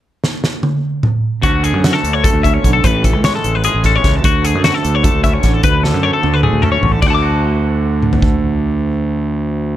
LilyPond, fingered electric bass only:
\new Staff \with { instrumentName = "Fingered electric bass" } { \clef bass \time 7/8 \key d \lydian \tempo 4 = 150 r2. r8 | d,8. fis,8 r16 d,8. d,8. b,,8 | a,,8. cis,8 r16 a,,8. a,,8. cis,8 | d,8. fis,8 r16 d,8. d,8. a,,8 |
d,8. fis,8 r16 d,8. d,8. a,,8 | d,2.~ d,8~ | d,2.~ d,8 | }